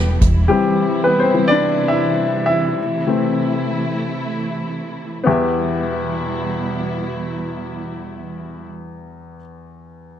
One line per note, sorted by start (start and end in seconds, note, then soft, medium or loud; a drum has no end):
0.00 0.17 E1 medium
0.00 0.17 E3 soft
0.00 5.23 E3 medium
0.00 0.23 G3 soft
0.00 2.74 G3 medium
0.00 0.17 B3 medium
0.00 0.17 B3 soft
0.00 0.17 G4 medium
0.00 0.23 G4 medium
0.21 0.47 E1 medium
0.21 5.24 C3 medium
0.21 2.76 E4 medium
0.21 kick medium
0.21 closed hi-hat medium
0.48 1.30 E3 soft
0.48 1.02 G3 medium
0.48 1.21 C4 soft
0.48 1.01 G4 medium
1.04 1.12 B3 medium
1.04 1.09 B4 medium
1.20 1.33 C4 soft
1.20 1.50 C5 medium
1.34 1.60 E3 soft
1.34 1.60 G3 soft
1.34 1.60 C4 soft
1.48 1.89 D4 medium
1.48 1.87 D5 medium
1.88 2.45 E4 medium
1.88 2.44 E5 medium
2.46 4.58 E4 medium
2.46 4.57 E5 medium
2.77 5.24 A3 medium
2.77 5.24 E4 medium
3.07 3.49 E3 soft
3.07 3.49 A3 soft
3.07 3.50 C4 soft
5.24 9.37 E2 medium
5.24 8.67 B2 medium
5.24 8.67 E3 soft
5.24 8.67 G3 soft
5.24 9.35 B3 medium
5.24 9.36 E4 medium
5.24 8.67 E4 medium
5.28 9.38 G4 soft
5.28 9.39 E5 medium